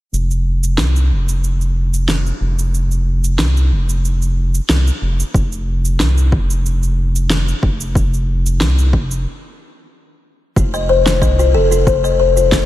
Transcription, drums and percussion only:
0.14 cabasa
0.31 cabasa
0.63 cabasa
0.78 snare, cabasa
0.96 cabasa
1.29 cabasa
1.44 cabasa
1.61 cabasa
1.94 cabasa
2.08 snare, cabasa
2.26 cabasa
2.59 cabasa
2.74 cabasa
2.91 cabasa
3.24 cabasa
3.39 snare, cabasa
3.57 cabasa
3.89 cabasa
4.05 cabasa
4.22 cabasa
4.55 cabasa
4.69 snare, cabasa
4.87 cabasa
5.20 cabasa
5.34 kick, cabasa
5.52 cabasa
5.85 cabasa
6.00 snare, cabasa
6.18 cabasa
6.32 kick
6.50 cabasa
6.66 cabasa
6.83 cabasa
7.16 cabasa
7.30 snare, cabasa
7.48 cabasa
7.63 kick
7.81 cabasa
7.95 kick, cabasa
8.14 cabasa
8.46 cabasa
8.61 snare, cabasa
8.79 cabasa
8.93 kick
9.11 cabasa
10.56 kick, cabasa
10.75 cabasa
11.06 snare, cabasa
11.22 kick, cabasa
11.40 cabasa
11.72 cabasa
11.87 kick, cabasa
12.05 cabasa
12.37 cabasa
12.52 kick, snare, cabasa

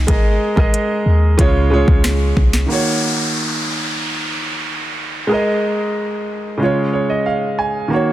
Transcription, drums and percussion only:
0.08 kick, closed hi-hat
0.57 kick
0.74 closed hi-hat
1.39 kick, closed hi-hat
1.88 kick
2.04 cross-stick, snare, closed hi-hat
2.37 kick
2.53 snare

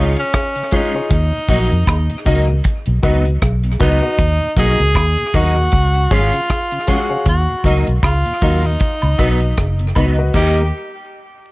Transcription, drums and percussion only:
0.17 closed hi-hat
0.34 kick, cross-stick, closed hi-hat
0.56 closed hi-hat
0.71 kick, closed hi-hat, tambourine
1.10 kick, closed hi-hat
1.49 kick, closed hi-hat, tambourine
1.72 closed hi-hat
1.87 kick, cross-stick, closed hi-hat, high woodblock
2.10 closed hi-hat
2.26 kick, closed hi-hat, tambourine
2.64 kick, closed hi-hat
2.86 closed hi-hat
3.03 kick, closed hi-hat, tambourine
3.25 closed hi-hat
3.42 kick, cross-stick, closed hi-hat
3.64 closed hi-hat
3.80 kick, closed hi-hat, tambourine
4.19 kick, closed hi-hat
4.57 kick, closed hi-hat, tambourine
4.79 closed hi-hat
4.95 kick, cross-stick, closed hi-hat, high woodblock
5.18 closed hi-hat
5.34 kick, closed hi-hat, tambourine
5.72 kick, closed hi-hat
5.94 closed hi-hat
6.11 kick, closed hi-hat, tambourine
6.33 closed hi-hat
6.50 kick, cross-stick, closed hi-hat
6.71 closed hi-hat
6.87 kick, closed hi-hat, tambourine
7.26 kick, closed hi-hat
7.64 kick, closed hi-hat, tambourine
7.87 closed hi-hat
8.03 kick, cross-stick, closed hi-hat, high woodblock
8.25 closed hi-hat
8.41 kick, open hi-hat, tambourine
8.80 kick, closed hi-hat
9.02 closed hi-hat, high woodblock
9.19 kick, closed hi-hat, tambourine
9.40 closed hi-hat
9.57 kick, cross-stick, closed hi-hat
9.79 closed hi-hat
9.95 kick, closed hi-hat, tambourine, high woodblock
10.34 kick, crash, tambourine

